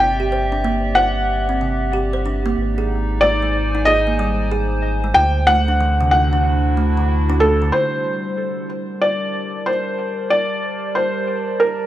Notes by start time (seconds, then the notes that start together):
Already playing: G1 G4 D5 E5
0.00 G5
0.20 G4
0.32 C5
0.52 D4
0.64 A#3
0.95 C5 F#5
1.49 C4
1.61 C3
1.93 G4
2.13 C5
2.26 D4
2.46 A#3
2.58 G#1 D#4
2.78 G#4
3.12 C5
3.21 G#3 D5 G#5
3.42 G#3
3.75 D#4
3.85 G#4 D#5
4.07 A#3
4.19 G3
4.52 G#4
5.04 G#3
5.14 D2 D3 G5
5.47 A3 F#5
5.68 D4
5.81 E3
5.85 F#4
6.01 C3
6.09 E4 F#5
6.33 D4
6.77 A3
6.97 D3
7.30 D4
7.40 A3 A4
7.62 D3
7.72 G3 C5
7.90 G4
8.46 A#4
8.78 A5
9.02 D5
9.37 D5
9.66 C5
10.30 D5
10.95 C5
11.60 A#4